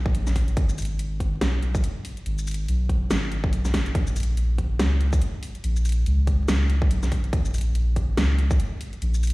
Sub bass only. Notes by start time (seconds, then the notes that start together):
Already playing: B1
0.15 A#1
0.57 G#1
1.41 B1
2.26 G#1
2.68 B1
3.10 G#1
3.53 B1
3.95 A#1
4.80 C#2
5.64 A#1
6.06 C#2
6.49 C#2
6.91 B1
7.33 A#1
8.17 C#2
9.02 A#1